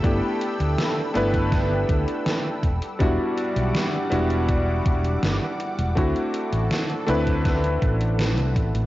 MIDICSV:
0, 0, Header, 1, 5, 480
1, 0, Start_track
1, 0, Key_signature, 1, "major"
1, 0, Tempo, 740741
1, 27, Time_signature, 4, 2, 24, 8
1, 5741, End_track
2, 0, Start_track
2, 0, Title_t, "Analog synth pad"
2, 0, Program_c, 0, 89
2, 0, Note_on_c, 0, 69, 82
2, 0, Note_on_c, 0, 79, 78
2, 0, Note_on_c, 0, 83, 74
2, 0, Note_on_c, 0, 88, 90
2, 1679, Note_off_c, 0, 69, 0
2, 1680, Note_off_c, 0, 79, 0
2, 1680, Note_off_c, 0, 83, 0
2, 1703, Note_on_c, 0, 78, 77
2, 1704, Note_on_c, 0, 55, 85
2, 1704, Note_on_c, 0, 86, 75
2, 3840, Note_off_c, 0, 88, 0
2, 3844, Note_off_c, 0, 55, 0
2, 3867, Note_on_c, 0, 69, 84
2, 5741, Note_off_c, 0, 69, 0
2, 5741, Note_off_c, 0, 78, 0
2, 5741, Note_off_c, 0, 86, 0
2, 5741, End_track
3, 0, Start_track
3, 0, Title_t, "Electric grand piano"
3, 0, Program_c, 1, 2
3, 0, Control_c, 1, 64, 127
3, 0, Note_on_c, 1, 57, 88
3, 0, Note_on_c, 1, 59, 82
3, 0, Note_on_c, 1, 62, 80
3, 0, Note_on_c, 1, 64, 81
3, 0, Note_on_c, 1, 67, 94
3, 16, Note_off_c, 1, 57, 0
3, 16, Note_on_c, 1, 57, 76
3, 20, Note_off_c, 1, 59, 0
3, 20, Note_on_c, 1, 59, 68
3, 26, Note_off_c, 1, 62, 0
3, 26, Note_on_c, 1, 62, 72
3, 31, Note_off_c, 1, 64, 0
3, 31, Note_on_c, 1, 64, 70
3, 35, Note_off_c, 1, 67, 0
3, 35, Note_on_c, 1, 67, 83
3, 713, Note_off_c, 1, 57, 0
3, 715, Note_off_c, 1, 59, 0
3, 718, Note_off_c, 1, 62, 0
3, 720, Note_off_c, 1, 64, 0
3, 722, Note_off_c, 1, 67, 0
3, 738, Note_on_c, 1, 57, 97
3, 744, Note_on_c, 1, 59, 90
3, 747, Note_on_c, 1, 62, 90
3, 752, Note_on_c, 1, 64, 90
3, 758, Note_on_c, 1, 71, 110
3, 1688, Note_off_c, 1, 57, 0
3, 1691, Note_off_c, 1, 59, 0
3, 1693, Note_off_c, 1, 62, 0
3, 1695, Note_off_c, 1, 64, 0
3, 1698, Note_off_c, 1, 71, 0
3, 1717, Control_c, 1, 64, 0
3, 1826, Control_c, 1, 64, 127
3, 1936, Note_on_c, 1, 55, 85
3, 1941, Note_on_c, 1, 59, 80
3, 1947, Note_on_c, 1, 62, 82
3, 1952, Note_on_c, 1, 64, 80
3, 1956, Note_on_c, 1, 66, 98
3, 2633, Note_off_c, 1, 55, 0
3, 2635, Note_off_c, 1, 59, 0
3, 2638, Note_off_c, 1, 62, 0
3, 2641, Note_off_c, 1, 64, 0
3, 2643, Note_off_c, 1, 66, 0
3, 2656, Note_on_c, 1, 55, 89
3, 2661, Note_on_c, 1, 59, 85
3, 2666, Note_on_c, 1, 62, 84
3, 2670, Note_on_c, 1, 64, 83
3, 2675, Note_on_c, 1, 66, 97
3, 3833, Note_off_c, 1, 55, 0
3, 3836, Note_off_c, 1, 59, 0
3, 3838, Note_off_c, 1, 62, 0
3, 3840, Note_off_c, 1, 64, 0
3, 3842, Note_off_c, 1, 66, 0
3, 3855, Note_on_c, 1, 57, 79
3, 3861, Note_on_c, 1, 60, 72
3, 3866, Note_on_c, 1, 62, 68
3, 3871, Note_on_c, 1, 64, 71
3, 3875, Control_c, 1, 64, 0
3, 3876, Note_on_c, 1, 66, 85
3, 4006, Control_c, 1, 64, 127
3, 4552, Note_off_c, 1, 57, 0
3, 4555, Note_off_c, 1, 60, 0
3, 4558, Note_off_c, 1, 62, 0
3, 4560, Note_off_c, 1, 64, 0
3, 4563, Note_off_c, 1, 66, 0
3, 4576, Note_on_c, 1, 57, 102
3, 4581, Note_on_c, 1, 60, 93
3, 4586, Note_on_c, 1, 62, 92
3, 4591, Note_on_c, 1, 64, 91
3, 4596, Note_on_c, 1, 71, 109
3, 5741, Note_off_c, 1, 57, 0
3, 5741, Note_off_c, 1, 60, 0
3, 5741, Note_off_c, 1, 62, 0
3, 5741, Note_off_c, 1, 64, 0
3, 5741, Note_off_c, 1, 71, 0
3, 5741, End_track
4, 0, Start_track
4, 0, Title_t, "Fretless electric bass"
4, 0, Program_c, 2, 35
4, 26, Note_on_c, 2, 31, 101
4, 123, Note_off_c, 2, 31, 0
4, 387, Note_on_c, 2, 38, 78
4, 483, Note_off_c, 2, 38, 0
4, 745, Note_on_c, 2, 31, 105
4, 1188, Note_off_c, 2, 31, 0
4, 1225, Note_on_c, 2, 38, 86
4, 1323, Note_off_c, 2, 38, 0
4, 1706, Note_on_c, 2, 28, 105
4, 1803, Note_off_c, 2, 28, 0
4, 1945, Note_on_c, 2, 28, 106
4, 2043, Note_off_c, 2, 28, 0
4, 2305, Note_on_c, 2, 35, 82
4, 2402, Note_off_c, 2, 35, 0
4, 2666, Note_on_c, 2, 28, 107
4, 3108, Note_off_c, 2, 28, 0
4, 3147, Note_on_c, 2, 28, 101
4, 3339, Note_off_c, 2, 28, 0
4, 3386, Note_on_c, 2, 31, 81
4, 3483, Note_off_c, 2, 31, 0
4, 3746, Note_on_c, 2, 28, 104
4, 3842, Note_off_c, 2, 28, 0
4, 3867, Note_on_c, 2, 38, 104
4, 3964, Note_off_c, 2, 38, 0
4, 4227, Note_on_c, 2, 33, 80
4, 4323, Note_off_c, 2, 33, 0
4, 4586, Note_on_c, 2, 38, 106
4, 5028, Note_off_c, 2, 38, 0
4, 5067, Note_on_c, 2, 33, 90
4, 5427, Note_off_c, 2, 33, 0
4, 5427, Note_on_c, 2, 36, 100
4, 5548, Note_off_c, 2, 36, 0
4, 5548, Note_on_c, 2, 33, 96
4, 5644, Note_off_c, 2, 33, 0
4, 5668, Note_on_c, 2, 33, 95
4, 5741, Note_off_c, 2, 33, 0
4, 5741, End_track
5, 0, Start_track
5, 0, Title_t, "Drums"
5, 26, Note_on_c, 9, 36, 112
5, 28, Note_on_c, 9, 42, 78
5, 91, Note_off_c, 9, 36, 0
5, 93, Note_off_c, 9, 42, 0
5, 267, Note_on_c, 9, 42, 75
5, 332, Note_off_c, 9, 42, 0
5, 390, Note_on_c, 9, 42, 49
5, 455, Note_off_c, 9, 42, 0
5, 508, Note_on_c, 9, 38, 115
5, 508, Note_on_c, 9, 42, 79
5, 573, Note_off_c, 9, 38, 0
5, 573, Note_off_c, 9, 42, 0
5, 747, Note_on_c, 9, 42, 73
5, 812, Note_off_c, 9, 42, 0
5, 867, Note_on_c, 9, 36, 61
5, 869, Note_on_c, 9, 42, 51
5, 932, Note_off_c, 9, 36, 0
5, 933, Note_off_c, 9, 42, 0
5, 986, Note_on_c, 9, 36, 117
5, 987, Note_on_c, 9, 38, 58
5, 987, Note_on_c, 9, 42, 72
5, 1051, Note_off_c, 9, 36, 0
5, 1052, Note_off_c, 9, 38, 0
5, 1052, Note_off_c, 9, 42, 0
5, 1226, Note_on_c, 9, 36, 106
5, 1227, Note_on_c, 9, 42, 76
5, 1290, Note_off_c, 9, 36, 0
5, 1292, Note_off_c, 9, 42, 0
5, 1348, Note_on_c, 9, 42, 53
5, 1413, Note_off_c, 9, 42, 0
5, 1467, Note_on_c, 9, 38, 118
5, 1467, Note_on_c, 9, 42, 72
5, 1531, Note_off_c, 9, 38, 0
5, 1531, Note_off_c, 9, 42, 0
5, 1706, Note_on_c, 9, 36, 60
5, 1707, Note_on_c, 9, 42, 77
5, 1771, Note_off_c, 9, 36, 0
5, 1772, Note_off_c, 9, 42, 0
5, 1828, Note_on_c, 9, 42, 53
5, 1893, Note_off_c, 9, 42, 0
5, 1946, Note_on_c, 9, 36, 111
5, 1946, Note_on_c, 9, 42, 81
5, 2011, Note_off_c, 9, 36, 0
5, 2011, Note_off_c, 9, 42, 0
5, 2186, Note_on_c, 9, 42, 83
5, 2251, Note_off_c, 9, 42, 0
5, 2308, Note_on_c, 9, 42, 52
5, 2373, Note_off_c, 9, 42, 0
5, 2427, Note_on_c, 9, 38, 118
5, 2427, Note_on_c, 9, 42, 77
5, 2491, Note_off_c, 9, 38, 0
5, 2491, Note_off_c, 9, 42, 0
5, 2667, Note_on_c, 9, 42, 79
5, 2732, Note_off_c, 9, 42, 0
5, 2787, Note_on_c, 9, 42, 51
5, 2852, Note_off_c, 9, 42, 0
5, 2906, Note_on_c, 9, 42, 78
5, 2907, Note_on_c, 9, 36, 115
5, 2971, Note_off_c, 9, 36, 0
5, 2971, Note_off_c, 9, 42, 0
5, 3147, Note_on_c, 9, 36, 104
5, 3147, Note_on_c, 9, 42, 80
5, 3212, Note_off_c, 9, 36, 0
5, 3212, Note_off_c, 9, 42, 0
5, 3268, Note_on_c, 9, 42, 54
5, 3333, Note_off_c, 9, 42, 0
5, 3387, Note_on_c, 9, 38, 112
5, 3387, Note_on_c, 9, 42, 74
5, 3452, Note_off_c, 9, 38, 0
5, 3452, Note_off_c, 9, 42, 0
5, 3627, Note_on_c, 9, 42, 75
5, 3692, Note_off_c, 9, 42, 0
5, 3748, Note_on_c, 9, 42, 53
5, 3813, Note_off_c, 9, 42, 0
5, 3867, Note_on_c, 9, 36, 117
5, 3868, Note_on_c, 9, 42, 83
5, 3932, Note_off_c, 9, 36, 0
5, 3933, Note_off_c, 9, 42, 0
5, 3990, Note_on_c, 9, 42, 38
5, 4054, Note_off_c, 9, 42, 0
5, 4107, Note_on_c, 9, 42, 82
5, 4172, Note_off_c, 9, 42, 0
5, 4229, Note_on_c, 9, 42, 53
5, 4294, Note_off_c, 9, 42, 0
5, 4347, Note_on_c, 9, 38, 117
5, 4347, Note_on_c, 9, 42, 83
5, 4412, Note_off_c, 9, 38, 0
5, 4412, Note_off_c, 9, 42, 0
5, 4468, Note_on_c, 9, 42, 38
5, 4533, Note_off_c, 9, 42, 0
5, 4587, Note_on_c, 9, 42, 79
5, 4652, Note_off_c, 9, 42, 0
5, 4708, Note_on_c, 9, 36, 62
5, 4709, Note_on_c, 9, 42, 55
5, 4773, Note_off_c, 9, 36, 0
5, 4774, Note_off_c, 9, 42, 0
5, 4827, Note_on_c, 9, 36, 115
5, 4827, Note_on_c, 9, 38, 58
5, 4827, Note_on_c, 9, 42, 78
5, 4892, Note_off_c, 9, 36, 0
5, 4892, Note_off_c, 9, 38, 0
5, 4892, Note_off_c, 9, 42, 0
5, 4949, Note_on_c, 9, 42, 38
5, 5014, Note_off_c, 9, 42, 0
5, 5068, Note_on_c, 9, 36, 104
5, 5068, Note_on_c, 9, 42, 80
5, 5132, Note_off_c, 9, 36, 0
5, 5133, Note_off_c, 9, 42, 0
5, 5189, Note_on_c, 9, 42, 58
5, 5254, Note_off_c, 9, 42, 0
5, 5309, Note_on_c, 9, 38, 118
5, 5309, Note_on_c, 9, 42, 80
5, 5373, Note_off_c, 9, 38, 0
5, 5373, Note_off_c, 9, 42, 0
5, 5430, Note_on_c, 9, 42, 38
5, 5495, Note_off_c, 9, 42, 0
5, 5548, Note_on_c, 9, 36, 59
5, 5549, Note_on_c, 9, 42, 83
5, 5613, Note_off_c, 9, 36, 0
5, 5614, Note_off_c, 9, 42, 0
5, 5670, Note_on_c, 9, 42, 55
5, 5735, Note_off_c, 9, 42, 0
5, 5741, End_track
0, 0, End_of_file